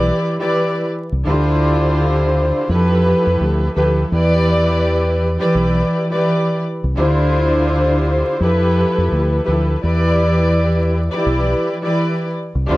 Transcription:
Already playing: B1 E3 E4 G4 B4 D5
0.39 E3 E4 G4 B4 D5
1.12 C2
1.25 D2 D3 D4 E4 F4 G4 C5
2.69 F2 F3 E4 G4 A4 B4
3.27 F2
3.41 D2
3.74 D2 F3 E4 G4 A4 B4
4.11 E2 E3 E4 G4 B4 D5
5.39 E3 E4 G4 B4 D5
5.55 B1
6.10 E3 E4 G4 B4 D5
6.84 C2
6.96 D2 D3 D4 E4 F4 G4 C5
8.40 F2 F3 E4 G4 A4 B4
8.98 F2
9.12 D2
9.45 D2 F3 E4 G4 A4 B4
9.82 E2 E3 E4 G4 B4 D5
11.10 E3 E4 G4 B4 D5
11.26 B1
11.81 E3 E4 G4 B4 D5
12.55 C2
12.67 D2 D3 D4 E4 F4 G4 C5

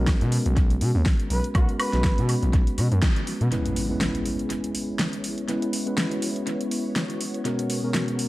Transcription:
Already playing: B1 G#3 B3 C#4 F#4 A#4
0.07 kick, snare, closed hi-hat
0.21 B2, closed hi-hat
0.32 open hi-hat
0.46 B1, closed hi-hat
0.57 kick, closed hi-hat
0.70 closed hi-hat
0.81 B2, open hi-hat
0.95 D#2
1.06 kick, snare, open hi-hat
1.20 closed hi-hat
1.30 B1 B4, open hi-hat
1.44 closed hi-hat
1.55 B1 G#3 B3 C#4 F#4 A#4, kick, closed hi-hat, high woodblock
1.69 closed hi-hat
1.80 B4, open hi-hat, high woodblock
1.92 B1 G#3 B3 C#4 F#4 B4, snare, closed hi-hat
2.04 kick, snare, closed hi-hat
2.18 B2, closed hi-hat
2.29 open hi-hat
2.43 B1, closed hi-hat
2.53 B1, kick, closed hi-hat
2.67 closed hi-hat
2.78 B2, open hi-hat
2.92 F#2, closed hi-hat
3.02 kick, snare, closed hi-hat
3.16 closed hi-hat
3.27 open hi-hat
3.41 B2, closed hi-hat
3.51 G#3 B3 C#4 E4 G#4 B4 C#5, closed hi-hat, impact
3.66 closed hi-hat
3.76 open hi-hat
3.89 G#3 B3 C#4 E4 B4
4.01 snare, closed hi-hat
4.15 closed hi-hat
4.26 open hi-hat
4.39 closed hi-hat
4.50 closed hi-hat
4.64 closed hi-hat
4.75 open hi-hat
4.99 snare, closed hi-hat
5.13 closed hi-hat
5.24 open hi-hat
5.38 closed hi-hat
5.48 G#3 B3 C#4 E4 F#4 B4, closed hi-hat
5.62 closed hi-hat
5.73 open hi-hat
5.86 G#3 B3 C#4 E4 B4, closed hi-hat
5.98 snare, closed hi-hat
6.11 closed hi-hat
6.22 open hi-hat
6.36 closed hi-hat
6.47 closed hi-hat
6.61 closed hi-hat
6.71 open hi-hat
6.96 snare, closed hi-hat
7.10 closed hi-hat
7.21 open hi-hat
7.34 closed hi-hat
7.45 B2 G#3 B3 C#4 F#4 G#4 A#4, closed hi-hat
7.59 closed hi-hat
7.70 open hi-hat
7.83 B2 G#3 B3 C#4 F#4 A#4
7.94 snare, closed hi-hat
8.08 closed hi-hat
8.19 open hi-hat

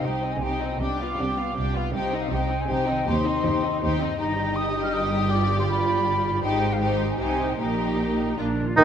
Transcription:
Already playing: C3 C4 D#4 G4
0.01 C2 C3 D#4 G4 C5 G5
0.22 C4 D#4 D#5
0.32 G#5
0.40 C2 C3 D#4 G4 C5 G5
0.60 C3 C4 D#4 D#5
0.66 B3
0.70 F4
0.75 C2 G4
0.79 C3 D4 G4 G5 D6
1.00 B3 F4 F5
1.17 C2 C3 D4 G4 G5
1.37 B3 F4 F5
1.55 C2 C3 D4 G4 G5
1.74 C3 B3 F4 F5
1.79 C4
1.84 D#4
1.88 G4
1.93 C2 C3 D#4 G4 C5 G5
2.12 C4 D#4 D#5
2.21 F5
2.30 C2 C3 D#4 G4 C5 G5
2.49 C4 D#4 D#5
2.60 G#5
2.68 C2 C3 D#4 G4 C5 G5
2.87 D#3 C4 D#4 D#5
2.95 C4
3.00 D#4
3.04 D#2 D#4 G4 C5 C6
3.24 C4 D#4 D#5
3.44 D#2 D#4 G4 C5
3.62 C4 D#4 D#5
3.80 D#2 D#4 G4 C5
4.00 G2 C4 D#4 D#5
4.06 D#4
4.11 G4
4.19 G1 G2 D#4 G4 D#5 A#5
4.55 D#6
4.82 F6
4.93 D#6
5.12 G2
5.16 D4
5.21 F4
5.25 G4
5.30 F4 D5 D6
5.59 C6
5.69 B5
6.26 G#2 C4
6.34 D#4
6.39 G#2 G4
6.43 G#1 D#4 G4 C5 G5
6.72 F5
6.80 D#4 G4 C5 G5
7.09 G#5
7.18 C2 C3 D#4 G4 C5 G#5
7.42 A#2
7.46 A#3 G5
7.55 A#2 D#4 G4 A#4 A#5
7.60 A#1 G4
8.20 A#2
8.24 A#3
8.29 D4
8.37 A#1 A#2 D4 F4 A#4
8.60 D#3
8.64 A#3 F4
8.68 D#4
8.73 D#2 D#3 D#4 G4
8.78 D#3

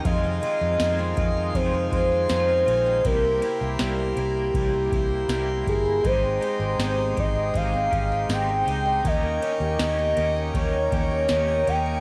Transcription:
Already playing: D#3 A#3 C#4 D#4 G4
0.04 F2 C3 D#3 G#3 C4 F4 G#4 D#5 F5 C6, kick, ride
0.24 G#3
0.41 C4 F4, ride
0.45 D#3 G#3
0.61 F2 F4
0.77 F2 D#3 G#3 C4, snare, ride, tambourine
0.83 F4
0.99 C4
1.15 F2 G#3 C4 F4 D#5, kick, ride
1.20 D#3
1.37 C4
1.53 F2 C3 D#3 G#3 C4 F4 C5, kick, ride
1.74 G#3
1.91 F2 G#3 C4 F4, kick, ride
1.96 D#3
2.12 F4
2.28 F2 D#3 G#3 C5, snare, ride, tambourine
2.32 C4 F4
2.48 C4
2.66 A#1 G#3 C4 F4, ride
2.72 D#3
2.86 C4
3.03 C2 C3 G3 A#3 E4 G4 A#4 G5, kick, ride
3.24 A#3
3.42 E4 G4, ride
3.47 A#3
3.61 C2 G4
3.78 C2 G3 A#3 E4, snare, ride, tambourine
3.83 G4
3.99 E4
4.16 C2 A#3 E4 G4, ride
4.22 A#3
4.36 E4
4.54 C2 C3 G3 A#3 E4, kick, ride
4.58 G4
4.74 A#3
4.91 C2 E4 G4, kick, ride
4.96 A#3
5.28 C2 G3 A#3, snare, ride, tambourine
5.32 E4 G4
5.49 E4
5.67 G1 A#3 E4 G#4, kick, ride
5.72 A#3
5.86 E4
6.03 G#1 G#3 C4 D#4 G4 C5, kick, ride
6.23 C4
6.41 D#4 G4, ride
6.47 C4
6.59 G#1 G4
6.78 G#1 G#3 C4, snare, ride, tambourine
6.82 D#4 G4
6.98 D#4
7.16 G#1 C4 D#4 G4 D#5, kick, ride
7.22 C4
7.35 D#4
7.53 G#1 G#3 C4 D#4 F5, kick, ride
7.58 G4
7.73 C4
7.91 G#1 D#4 G4, kick, ride
7.97 C4
8.12 G4
8.28 G#1 G#3 C4 D#4, snare, ride, tambourine
8.33 G4 G5
8.49 D#4
8.65 C#2 C4 D#4 G4, ride
8.71 C4
8.86 D#4
9.03 D#2 D#3 A#3 C#4 A#4 C#6, kick, ride
9.07 G4 D#5
9.23 A#3
9.41 C#4 G4, ride
9.46 A#3
9.60 D#2 G4
9.77 D#2 D#3 A#3 C#4, snare, ride, tambourine
9.81 G4 D#5
9.99 C#4
10.15 D#2 A#3 C#4 G4, ride
10.21 A#3
10.36 C#4
10.54 D#2 D#3 A#3 C#4 G4 C#5, kick, ride
10.73 A#3
10.91 D#2 C#4 G4, kick, ride
10.97 A#3
11.11 G4
11.28 D#2 D#3 A#3 C#4, snare, ride, tambourine
11.33 G4
11.48 C#4
11.67 D#2 A#3 C#4 G4 G5, ride
11.72 A#3
11.86 C#4

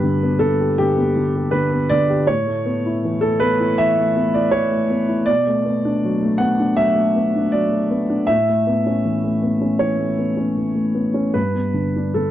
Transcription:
Already playing: G2 D3 B3 G4 B4
0.03 D3
0.23 B3
0.39 D3 A4
0.60 G4
0.78 D3 G4
0.98 B3
1.17 D3
1.36 G4
1.51 D3 B4
1.71 B3
1.89 D3 D5
2.10 G4
2.27 A2 C#5
2.47 A3
2.66 B3
2.86 E4
3.05 E3
3.21 A3 A4
3.40 B3 B4
3.60 E4
3.78 E3 E5
3.98 A3
4.17 B3
4.34 E4 D5
4.51 E3 C#5
4.71 A3
4.90 B3
5.08 E4
5.26 B2 D5
5.47 A3
5.65 B3
5.85 D4
6.05 F#3
6.23 A3
6.38 B3 F#5
6.59 D4
6.77 F#3 E5
6.95 A3
7.16 B3
7.36 D4
7.52 F#3 D5
7.72 A3
7.91 B3
8.10 D4
8.27 A2 E5
8.49 A3
8.67 B3
8.86 C#4
9.05 E3
9.24 A3
9.43 B3
9.61 C#4
9.79 E3 C#5
9.99 A3
10.18 B3
10.37 C#4
10.57 E3
10.75 A3
10.95 B3
11.14 C#4
11.34 G2 B4
11.55 B3
11.74 D3
11.96 D4
12.14 D3 A4

